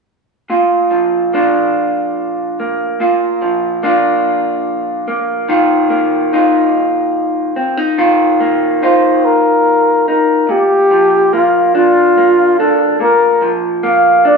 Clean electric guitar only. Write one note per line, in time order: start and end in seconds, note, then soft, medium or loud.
0.50 2.99 A#2 soft
0.50 1.35 F4 soft
0.91 3.41 F3 soft
1.33 2.59 A#3 soft
1.33 2.96 D4 soft
1.33 3.01 F4 soft
2.60 3.83 A#3 soft
3.00 5.49 A#2 soft
3.00 3.84 F4 soft
3.42 5.48 F3 soft
3.83 5.07 A#3 soft
3.83 5.44 D4 soft
3.83 5.49 F4 soft
5.08 5.90 A#3 soft
5.49 7.97 D#3 medium
5.49 6.33 F4 soft
5.90 8.40 A#3 soft
6.33 7.56 D#4 soft
6.33 7.98 F4 soft
7.56 7.77 C4 soft
7.77 7.98 D#4 soft
7.98 10.49 D#3 soft
7.98 8.82 F4 soft
8.40 10.44 A#3 soft
8.82 10.07 D#4 soft
8.82 13.01 F4 soft
10.08 10.44 D#4 soft
10.49 12.99 A#2 medium
10.91 13.41 F3 soft
11.33 12.17 A#3 soft
11.75 12.58 D4 soft
12.17 13.83 A#3 soft
12.60 12.96 D4 soft
13.00 14.37 A#2 soft
13.42 14.37 F3 soft
13.83 14.37 A#3 soft
14.25 14.37 D4 soft